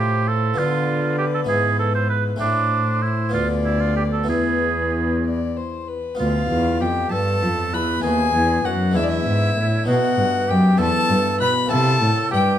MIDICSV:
0, 0, Header, 1, 5, 480
1, 0, Start_track
1, 0, Tempo, 609756
1, 460, Time_signature, 6, 3, 24, 8
1, 2381, Tempo, 628931
1, 5741, Tempo, 610998
1, 9794, End_track
2, 0, Start_track
2, 0, Title_t, "Violin"
2, 0, Program_c, 0, 40
2, 0, Note_on_c, 0, 72, 63
2, 461, Note_off_c, 0, 72, 0
2, 467, Note_on_c, 0, 71, 80
2, 1870, Note_off_c, 0, 71, 0
2, 1895, Note_on_c, 0, 72, 74
2, 2618, Note_on_c, 0, 74, 80
2, 2630, Note_off_c, 0, 72, 0
2, 3336, Note_off_c, 0, 74, 0
2, 3341, Note_on_c, 0, 71, 61
2, 4011, Note_off_c, 0, 71, 0
2, 4078, Note_on_c, 0, 74, 70
2, 4321, Note_on_c, 0, 72, 62
2, 4332, Note_off_c, 0, 74, 0
2, 4560, Note_on_c, 0, 71, 59
2, 4571, Note_off_c, 0, 72, 0
2, 4800, Note_off_c, 0, 71, 0
2, 4804, Note_on_c, 0, 77, 87
2, 5274, Note_on_c, 0, 79, 86
2, 5285, Note_off_c, 0, 77, 0
2, 5500, Note_off_c, 0, 79, 0
2, 5504, Note_on_c, 0, 81, 96
2, 5986, Note_on_c, 0, 83, 85
2, 5997, Note_off_c, 0, 81, 0
2, 6219, Note_off_c, 0, 83, 0
2, 6224, Note_on_c, 0, 80, 110
2, 6703, Note_on_c, 0, 78, 81
2, 6714, Note_off_c, 0, 80, 0
2, 6946, Note_on_c, 0, 76, 99
2, 6958, Note_off_c, 0, 78, 0
2, 7000, Note_on_c, 0, 74, 84
2, 7012, Note_off_c, 0, 76, 0
2, 7049, Note_on_c, 0, 76, 94
2, 7060, Note_off_c, 0, 74, 0
2, 7662, Note_off_c, 0, 76, 0
2, 7667, Note_on_c, 0, 78, 98
2, 8156, Note_on_c, 0, 79, 84
2, 8168, Note_off_c, 0, 78, 0
2, 8386, Note_off_c, 0, 79, 0
2, 8391, Note_on_c, 0, 81, 114
2, 8858, Note_off_c, 0, 81, 0
2, 8869, Note_on_c, 0, 83, 111
2, 9101, Note_off_c, 0, 83, 0
2, 9109, Note_on_c, 0, 81, 114
2, 9575, Note_off_c, 0, 81, 0
2, 9594, Note_on_c, 0, 79, 102
2, 9794, Note_off_c, 0, 79, 0
2, 9794, End_track
3, 0, Start_track
3, 0, Title_t, "Oboe"
3, 0, Program_c, 1, 68
3, 0, Note_on_c, 1, 67, 90
3, 222, Note_on_c, 1, 69, 86
3, 233, Note_off_c, 1, 67, 0
3, 460, Note_on_c, 1, 65, 90
3, 472, Note_off_c, 1, 69, 0
3, 928, Note_off_c, 1, 65, 0
3, 933, Note_on_c, 1, 67, 81
3, 987, Note_off_c, 1, 67, 0
3, 1059, Note_on_c, 1, 69, 77
3, 1112, Note_off_c, 1, 69, 0
3, 1173, Note_on_c, 1, 68, 99
3, 1406, Note_off_c, 1, 68, 0
3, 1410, Note_on_c, 1, 69, 89
3, 1530, Note_off_c, 1, 69, 0
3, 1534, Note_on_c, 1, 72, 87
3, 1646, Note_off_c, 1, 72, 0
3, 1651, Note_on_c, 1, 71, 79
3, 1760, Note_off_c, 1, 71, 0
3, 1894, Note_on_c, 1, 62, 104
3, 2378, Note_on_c, 1, 64, 79
3, 2389, Note_off_c, 1, 62, 0
3, 2615, Note_off_c, 1, 64, 0
3, 2619, Note_on_c, 1, 65, 89
3, 2727, Note_off_c, 1, 65, 0
3, 2857, Note_on_c, 1, 64, 73
3, 2979, Note_on_c, 1, 65, 77
3, 2990, Note_off_c, 1, 64, 0
3, 3092, Note_off_c, 1, 65, 0
3, 3097, Note_on_c, 1, 67, 74
3, 3152, Note_off_c, 1, 67, 0
3, 3223, Note_on_c, 1, 69, 76
3, 3342, Note_off_c, 1, 69, 0
3, 3348, Note_on_c, 1, 68, 86
3, 4063, Note_off_c, 1, 68, 0
3, 4801, Note_on_c, 1, 65, 72
3, 5240, Note_off_c, 1, 65, 0
3, 5266, Note_on_c, 1, 67, 73
3, 5509, Note_on_c, 1, 69, 90
3, 5521, Note_off_c, 1, 67, 0
3, 5980, Note_on_c, 1, 71, 78
3, 5992, Note_off_c, 1, 69, 0
3, 6216, Note_off_c, 1, 71, 0
3, 6220, Note_on_c, 1, 68, 82
3, 6701, Note_on_c, 1, 66, 68
3, 6713, Note_off_c, 1, 68, 0
3, 6931, Note_off_c, 1, 66, 0
3, 6936, Note_on_c, 1, 64, 84
3, 7648, Note_off_c, 1, 64, 0
3, 7664, Note_on_c, 1, 66, 82
3, 8141, Note_on_c, 1, 67, 87
3, 8153, Note_off_c, 1, 66, 0
3, 8382, Note_on_c, 1, 69, 106
3, 8394, Note_off_c, 1, 67, 0
3, 8858, Note_off_c, 1, 69, 0
3, 8863, Note_on_c, 1, 71, 86
3, 8971, Note_off_c, 1, 71, 0
3, 9104, Note_on_c, 1, 69, 98
3, 9573, Note_off_c, 1, 69, 0
3, 9581, Note_on_c, 1, 67, 95
3, 9794, Note_off_c, 1, 67, 0
3, 9794, End_track
4, 0, Start_track
4, 0, Title_t, "Harpsichord"
4, 0, Program_c, 2, 6
4, 0, Note_on_c, 2, 45, 53
4, 0, Note_on_c, 2, 57, 49
4, 0, Note_on_c, 2, 60, 50
4, 0, Note_on_c, 2, 65, 50
4, 423, Note_off_c, 2, 57, 0
4, 425, Note_on_c, 2, 59, 50
4, 427, Note_off_c, 2, 65, 0
4, 429, Note_off_c, 2, 60, 0
4, 431, Note_off_c, 2, 45, 0
4, 437, Note_on_c, 2, 65, 49
4, 462, Note_on_c, 2, 50, 54
4, 1128, Note_off_c, 2, 59, 0
4, 1137, Note_on_c, 2, 59, 52
4, 1141, Note_off_c, 2, 65, 0
4, 1145, Note_off_c, 2, 50, 0
4, 1150, Note_on_c, 2, 64, 53
4, 1172, Note_on_c, 2, 44, 61
4, 1855, Note_off_c, 2, 59, 0
4, 1860, Note_on_c, 2, 57, 55
4, 1861, Note_off_c, 2, 64, 0
4, 1863, Note_off_c, 2, 44, 0
4, 1871, Note_on_c, 2, 60, 49
4, 1881, Note_on_c, 2, 64, 51
4, 1894, Note_on_c, 2, 45, 56
4, 2580, Note_off_c, 2, 57, 0
4, 2585, Note_on_c, 2, 59, 50
4, 2586, Note_off_c, 2, 60, 0
4, 2588, Note_off_c, 2, 45, 0
4, 2591, Note_off_c, 2, 64, 0
4, 2598, Note_on_c, 2, 65, 52
4, 2622, Note_on_c, 2, 38, 54
4, 3297, Note_off_c, 2, 59, 0
4, 3306, Note_on_c, 2, 59, 48
4, 3311, Note_off_c, 2, 65, 0
4, 3315, Note_off_c, 2, 38, 0
4, 3317, Note_on_c, 2, 64, 43
4, 3340, Note_on_c, 2, 40, 51
4, 4614, Note_off_c, 2, 40, 0
4, 4751, Note_off_c, 2, 59, 0
4, 4757, Note_off_c, 2, 64, 0
4, 4766, Note_on_c, 2, 59, 48
4, 4778, Note_on_c, 2, 65, 47
4, 4802, Note_on_c, 2, 38, 53
4, 5013, Note_off_c, 2, 38, 0
4, 5037, Note_on_c, 2, 40, 50
4, 5248, Note_off_c, 2, 40, 0
4, 5270, Note_on_c, 2, 41, 50
4, 5483, Note_off_c, 2, 41, 0
4, 5509, Note_on_c, 2, 43, 58
4, 5721, Note_off_c, 2, 43, 0
4, 5744, Note_on_c, 2, 41, 48
4, 5961, Note_off_c, 2, 41, 0
4, 5990, Note_on_c, 2, 40, 46
4, 6176, Note_off_c, 2, 59, 0
4, 6182, Note_off_c, 2, 65, 0
4, 6192, Note_on_c, 2, 57, 49
4, 6202, Note_on_c, 2, 59, 52
4, 6204, Note_off_c, 2, 40, 0
4, 6214, Note_on_c, 2, 66, 48
4, 6227, Note_on_c, 2, 39, 57
4, 6441, Note_off_c, 2, 57, 0
4, 6443, Note_off_c, 2, 39, 0
4, 6467, Note_on_c, 2, 40, 57
4, 6682, Note_off_c, 2, 40, 0
4, 6704, Note_on_c, 2, 42, 48
4, 6909, Note_on_c, 2, 56, 53
4, 6910, Note_off_c, 2, 59, 0
4, 6917, Note_off_c, 2, 66, 0
4, 6920, Note_off_c, 2, 42, 0
4, 6921, Note_on_c, 2, 59, 54
4, 6931, Note_on_c, 2, 62, 55
4, 6944, Note_on_c, 2, 40, 65
4, 7160, Note_off_c, 2, 40, 0
4, 7184, Note_on_c, 2, 44, 49
4, 7393, Note_off_c, 2, 56, 0
4, 7399, Note_off_c, 2, 59, 0
4, 7401, Note_off_c, 2, 44, 0
4, 7425, Note_on_c, 2, 45, 52
4, 7635, Note_on_c, 2, 57, 56
4, 7639, Note_off_c, 2, 62, 0
4, 7643, Note_off_c, 2, 45, 0
4, 7648, Note_on_c, 2, 59, 60
4, 7659, Note_on_c, 2, 63, 53
4, 7670, Note_on_c, 2, 47, 62
4, 7886, Note_off_c, 2, 47, 0
4, 7908, Note_on_c, 2, 43, 56
4, 8124, Note_off_c, 2, 43, 0
4, 8154, Note_on_c, 2, 42, 64
4, 8349, Note_off_c, 2, 57, 0
4, 8356, Note_off_c, 2, 59, 0
4, 8362, Note_off_c, 2, 63, 0
4, 8367, Note_off_c, 2, 42, 0
4, 8367, Note_on_c, 2, 59, 60
4, 8378, Note_on_c, 2, 64, 64
4, 8390, Note_on_c, 2, 40, 64
4, 8604, Note_off_c, 2, 40, 0
4, 8626, Note_on_c, 2, 43, 67
4, 8842, Note_off_c, 2, 43, 0
4, 8865, Note_on_c, 2, 47, 57
4, 9067, Note_on_c, 2, 58, 58
4, 9072, Note_off_c, 2, 59, 0
4, 9078, Note_off_c, 2, 64, 0
4, 9078, Note_on_c, 2, 60, 56
4, 9080, Note_off_c, 2, 47, 0
4, 9092, Note_on_c, 2, 64, 61
4, 9101, Note_on_c, 2, 48, 67
4, 9317, Note_off_c, 2, 48, 0
4, 9348, Note_on_c, 2, 45, 65
4, 9561, Note_off_c, 2, 45, 0
4, 9586, Note_on_c, 2, 43, 62
4, 9781, Note_off_c, 2, 58, 0
4, 9786, Note_off_c, 2, 60, 0
4, 9793, Note_off_c, 2, 64, 0
4, 9794, Note_off_c, 2, 43, 0
4, 9794, End_track
5, 0, Start_track
5, 0, Title_t, "Cello"
5, 0, Program_c, 3, 42
5, 0, Note_on_c, 3, 45, 70
5, 445, Note_off_c, 3, 45, 0
5, 461, Note_on_c, 3, 50, 71
5, 1161, Note_off_c, 3, 50, 0
5, 1174, Note_on_c, 3, 44, 67
5, 1881, Note_off_c, 3, 44, 0
5, 1895, Note_on_c, 3, 45, 62
5, 2615, Note_on_c, 3, 38, 66
5, 2626, Note_off_c, 3, 45, 0
5, 3340, Note_on_c, 3, 40, 60
5, 3351, Note_off_c, 3, 38, 0
5, 4644, Note_off_c, 3, 40, 0
5, 4799, Note_on_c, 3, 38, 58
5, 5018, Note_off_c, 3, 38, 0
5, 5030, Note_on_c, 3, 40, 68
5, 5267, Note_on_c, 3, 41, 62
5, 5279, Note_off_c, 3, 40, 0
5, 5501, Note_off_c, 3, 41, 0
5, 5505, Note_on_c, 3, 43, 67
5, 5738, Note_on_c, 3, 41, 59
5, 5750, Note_off_c, 3, 43, 0
5, 5978, Note_on_c, 3, 40, 62
5, 5990, Note_off_c, 3, 41, 0
5, 6216, Note_off_c, 3, 40, 0
5, 6220, Note_on_c, 3, 39, 71
5, 6458, Note_off_c, 3, 39, 0
5, 6463, Note_on_c, 3, 40, 70
5, 6695, Note_off_c, 3, 40, 0
5, 6700, Note_on_c, 3, 42, 68
5, 6940, Note_on_c, 3, 40, 68
5, 6952, Note_off_c, 3, 42, 0
5, 7176, Note_off_c, 3, 40, 0
5, 7180, Note_on_c, 3, 44, 72
5, 7416, Note_off_c, 3, 44, 0
5, 7421, Note_on_c, 3, 45, 62
5, 7657, Note_off_c, 3, 45, 0
5, 7662, Note_on_c, 3, 47, 75
5, 7725, Note_off_c, 3, 47, 0
5, 7900, Note_on_c, 3, 43, 73
5, 7963, Note_off_c, 3, 43, 0
5, 8142, Note_on_c, 3, 42, 72
5, 8380, Note_off_c, 3, 42, 0
5, 8384, Note_on_c, 3, 40, 82
5, 8446, Note_off_c, 3, 40, 0
5, 8622, Note_on_c, 3, 43, 73
5, 8685, Note_off_c, 3, 43, 0
5, 8865, Note_on_c, 3, 47, 65
5, 8928, Note_off_c, 3, 47, 0
5, 9102, Note_on_c, 3, 48, 84
5, 9337, Note_off_c, 3, 48, 0
5, 9342, Note_on_c, 3, 45, 80
5, 9404, Note_off_c, 3, 45, 0
5, 9583, Note_on_c, 3, 43, 79
5, 9794, Note_off_c, 3, 43, 0
5, 9794, End_track
0, 0, End_of_file